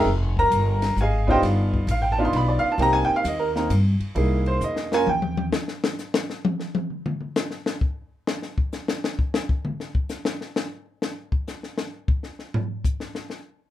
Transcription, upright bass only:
X:1
M:3/4
L:1/8
Q:"Swing" 1/4=131
K:Cphr
V:1 name="Upright bass" clef=bass
F,,,2 G,,,2 A,,,2 | G,,,2 =A,,,2 =B,,, z | C,, z E,,2 G,, z | C,,2 =E,,2 _E,,2 |
[K:Ab] z6 | z6 | z6 | z6 |
z6 | z6 |]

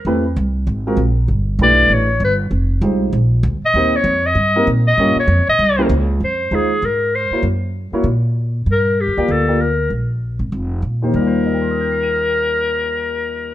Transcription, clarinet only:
X:1
M:4/4
L:1/8
Q:"Swing" 1/4=195
K:Eb
V:1 name="Clarinet"
z8 | z2 d2 _d2 =B z | z6 z e- | e _d2 e3 z e- |
e _d2 e3 z2 | c2 A2 B2 c2 | z8 | B2 G2 =A2 B2 |
z8 | B8- | B8 |]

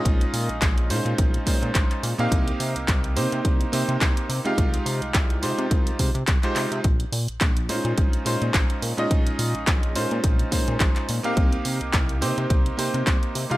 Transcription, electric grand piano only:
X:1
M:4/4
L:1/16
Q:"Swing 16ths" 1/4=106
K:Bbdor
V:1 name="Electric grand piano"
[A,DEFe]6 [A,DEFc]4 [A,DEFc]4- [A,DEFc] [B,CEGf]- | [B,CEGf]6 [B,CEGc]4 [B,CEGc]4- [B,CEGc] [A,EFGf]- | [A,EFGf]6 [A,EFGc]4 [A,EFGc] z2 [A,EFGc]3 | z6 [A,DEFc]4 [A,DEFc]4- [A,DEFc] [A,DEFe]- |
[A,DEFe]6 [A,DEFc]4 [A,DEFc]4- [A,DEFc] [B,CEGf]- | [B,CEGf]6 [B,CEGc]4 [B,CEGc]4- [B,CEGc] [A,EFGf] |]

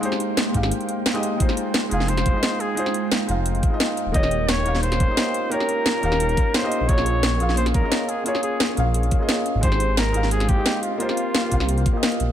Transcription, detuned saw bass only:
X:1
M:4/4
L:1/16
Q:1/4=175
K:Fm
V:1 name="Detuned saw bass" clef=bass
z6 A,,,2 z8 | z6 F,,,4 F,,, z4 z | z6 F,,,4 z4 z E,,,- | E,,,6 E,,,4 E,,, z4 z |
z6 E,,,4 z4 z B,,,- | B,,,6 B,,,4 B,,, z4 z | z6 B,,,4 z4 z A,,,- | A,,,6 A,,,4 A,,, z4 z |
z6 C,,4 z4 B,,, G,,, |]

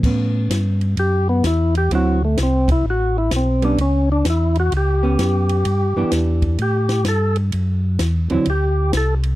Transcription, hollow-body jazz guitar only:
X:1
M:4/4
L:1/8
Q:"Swing" 1/4=128
K:Amix
V:1 name="Hollow-body jazz guitar"
[B,C]4- [B,C] z3 | [D,F,=CE] z6 [G,B,^C] | z4 z [B,C]3 | z [E,B,DG]3 z4 |
z3 [D,F,=CE] z4 |]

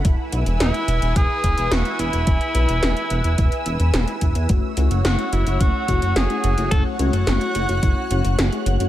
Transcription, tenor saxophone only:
X:1
M:4/4
L:1/8
Q:1/4=108
K:F#m
V:1 name="Tenor saxophone"
z2 E2 G2 F E- | E6 z2 | z2 F E F2 G2 | A F6 z |]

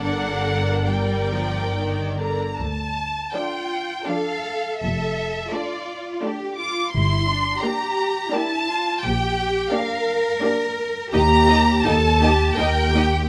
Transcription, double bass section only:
X:1
M:3/4
L:1/16
Q:1/4=83
K:Gm
V:1 name="Double bass section" clef=bass
G,,,8- G,,,3 z | [K:Dm] D,,4 z8 | F,,,4 z8 | G,,,4 z8 |
B,,,4 z8 | [K:Eblyd] E,,4 E,,4 E,,4 |]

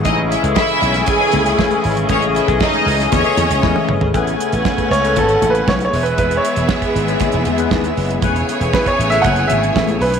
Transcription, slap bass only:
X:1
M:4/4
L:1/16
Q:1/4=118
K:Alyd
V:1 name="Slap bass" clef=bass
A,,,3 C,, z2 B,,,2 z2 C,,2 z2 G,,,2 | A,,,3 B,,, z2 C,,2 E,, z E,, C,, E,, z F,,, G,,, | A,,,2 z A,,, z2 C,,2 G,,,2 A,,,2 B,,,2 E,,,2 | E,,,2 z E,,, z2 G,,,2 z E,,, E,,2 D,,2 F,,,2 |
E,,,2 z E,,, z2 A,,,2 F,,,2 G,,,2 A,,,2 B,,,2 |]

